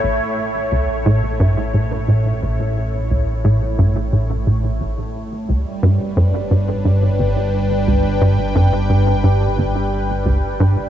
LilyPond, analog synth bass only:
\new Staff \with { instrumentName = "Analog synth bass" } { \clef bass \time 4/4 \key a \mixolydian \tempo 4 = 88 a,,16 r8. cis,16 r16 a,16 r16 g,16 r16 a,8 a,8 a,,16 r16 | r8 cis,16 r16 a,16 r16 g,16 r16 a,8 a,8 a,,16 r8. | cis,16 r16 g,16 r16 fis,16 r16 g,8 g,8 g,,16 r8. cis,16 r16 | g,16 r16 fis,16 r16 g,8 g,8 g,,16 r8. cis,16 r16 g,16 r16 | }